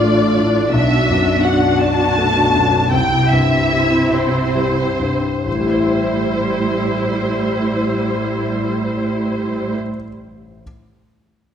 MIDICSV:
0, 0, Header, 1, 5, 480
1, 0, Start_track
1, 0, Key_signature, 0, "minor"
1, 0, Tempo, 715137
1, 493, Time_signature, 6, 3, 24, 8
1, 1459, Tempo, 773196
1, 2419, Tempo, 839161
1, 2899, Tempo, 903614
1, 3379, Tempo, 862069
1, 4819, Tempo, 853485
1, 6786, End_track
2, 0, Start_track
2, 0, Title_t, "Violin section"
2, 0, Program_c, 0, 48
2, 0, Note_on_c, 0, 74, 56
2, 487, Note_on_c, 0, 76, 64
2, 491, Note_off_c, 0, 74, 0
2, 958, Note_off_c, 0, 76, 0
2, 961, Note_on_c, 0, 78, 50
2, 1206, Note_on_c, 0, 81, 63
2, 1208, Note_off_c, 0, 78, 0
2, 1924, Note_on_c, 0, 79, 65
2, 1928, Note_off_c, 0, 81, 0
2, 2164, Note_off_c, 0, 79, 0
2, 2173, Note_on_c, 0, 76, 57
2, 2652, Note_on_c, 0, 72, 48
2, 2654, Note_off_c, 0, 76, 0
2, 3371, Note_off_c, 0, 72, 0
2, 3377, Note_on_c, 0, 72, 45
2, 5771, Note_off_c, 0, 72, 0
2, 6786, End_track
3, 0, Start_track
3, 0, Title_t, "Viola section"
3, 0, Program_c, 1, 48
3, 0, Note_on_c, 1, 62, 43
3, 0, Note_on_c, 1, 65, 48
3, 465, Note_off_c, 1, 65, 0
3, 491, Note_on_c, 1, 66, 47
3, 1905, Note_off_c, 1, 66, 0
3, 1906, Note_off_c, 1, 62, 0
3, 1932, Note_on_c, 1, 60, 49
3, 1932, Note_on_c, 1, 64, 53
3, 3227, Note_off_c, 1, 60, 0
3, 3227, Note_off_c, 1, 64, 0
3, 3378, Note_on_c, 1, 55, 34
3, 3379, Note_on_c, 1, 64, 33
3, 5771, Note_off_c, 1, 55, 0
3, 5772, Note_off_c, 1, 64, 0
3, 6786, End_track
4, 0, Start_track
4, 0, Title_t, "Grand piano"
4, 0, Program_c, 2, 0
4, 0, Control_c, 2, 64, 127
4, 0, Note_on_c, 2, 33, 35
4, 0, Note_on_c, 2, 45, 30
4, 0, Note_on_c, 2, 65, 32
4, 0, Note_on_c, 2, 74, 34
4, 24, Note_on_c, 2, 57, 30
4, 162, Note_off_c, 2, 74, 0
4, 257, Note_off_c, 2, 45, 0
4, 257, Note_on_c, 2, 45, 30
4, 400, Note_off_c, 2, 57, 0
4, 466, Note_off_c, 2, 33, 0
4, 493, Note_off_c, 2, 45, 0
4, 493, Note_on_c, 2, 35, 40
4, 506, Note_off_c, 2, 65, 0
4, 506, Control_c, 2, 64, 0
4, 619, Control_c, 2, 64, 127
4, 734, Note_on_c, 2, 42, 31
4, 972, Note_on_c, 2, 66, 33
4, 1116, Note_off_c, 2, 42, 0
4, 1218, Note_on_c, 2, 74, 39
4, 1360, Note_off_c, 2, 66, 0
4, 1463, Note_on_c, 2, 57, 31
4, 1601, Note_off_c, 2, 74, 0
4, 1690, Note_on_c, 2, 42, 31
4, 1837, Note_off_c, 2, 57, 0
4, 1906, Note_off_c, 2, 35, 0
4, 1923, Note_on_c, 2, 36, 39
4, 1929, Note_off_c, 2, 42, 0
4, 1943, Control_c, 2, 64, 0
4, 2066, Control_c, 2, 64, 127
4, 2165, Note_on_c, 2, 43, 34
4, 2418, Note_on_c, 2, 64, 31
4, 2556, Note_off_c, 2, 43, 0
4, 2652, Note_on_c, 2, 72, 34
4, 2799, Note_off_c, 2, 64, 0
4, 2895, Note_on_c, 2, 55, 27
4, 3041, Note_off_c, 2, 72, 0
4, 3130, Note_on_c, 2, 43, 26
4, 3284, Note_off_c, 2, 55, 0
4, 3354, Note_off_c, 2, 36, 0
4, 3374, Note_off_c, 2, 43, 0
4, 3375, Note_on_c, 2, 33, 27
4, 3391, Control_c, 2, 64, 0
4, 3411, Note_on_c, 2, 45, 27
4, 3454, Note_on_c, 2, 55, 28
4, 3485, Control_c, 2, 64, 127
4, 3491, Note_on_c, 2, 64, 27
4, 3532, Note_on_c, 2, 72, 25
4, 3568, Note_on_c, 2, 76, 25
4, 5768, Note_off_c, 2, 33, 0
4, 5804, Note_off_c, 2, 45, 0
4, 5848, Note_off_c, 2, 55, 0
4, 5885, Note_off_c, 2, 64, 0
4, 5927, Note_off_c, 2, 72, 0
4, 5964, Note_off_c, 2, 76, 0
4, 6271, Control_c, 2, 64, 0
4, 6786, End_track
5, 0, Start_track
5, 0, Title_t, "Cello section"
5, 0, Program_c, 3, 48
5, 0, Note_on_c, 3, 45, 44
5, 470, Note_off_c, 3, 45, 0
5, 496, Note_on_c, 3, 47, 43
5, 1907, Note_off_c, 3, 47, 0
5, 1925, Note_on_c, 3, 48, 44
5, 3245, Note_off_c, 3, 48, 0
5, 3377, Note_on_c, 3, 45, 34
5, 5770, Note_off_c, 3, 45, 0
5, 6786, End_track
0, 0, End_of_file